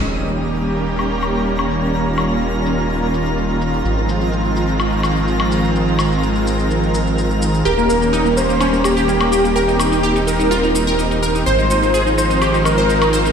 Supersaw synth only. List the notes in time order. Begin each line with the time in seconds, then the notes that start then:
0.03 D#3 G3 A#3 C#4 G4
1.94 F4
3.85 F3 G#3 C4
7.65 G3 A#3 C#4 G4
9.56 C4
11.46 D#3 F3 G#3 C4 F4